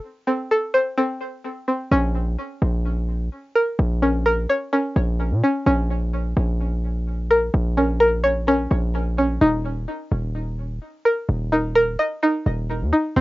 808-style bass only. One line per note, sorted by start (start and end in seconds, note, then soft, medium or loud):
1.91 2.36 A#1 loud
2.62 3.29 A#1 loud
3.79 4.46 A#1 loud
4.96 5.33 A#1 loud
5.31 5.42 A#2 loud
5.66 6.34 A#1 loud
6.37 7.50 A#1 loud
7.54 8.67 A#1 loud
8.71 9.39 A#1 loud
9.41 9.86 D#1 loud
10.12 10.79 D#1 loud
11.29 11.96 D#1 loud
12.46 12.83 D#1 loud
12.81 12.92 D#2 loud
13.16 13.21 F1 loud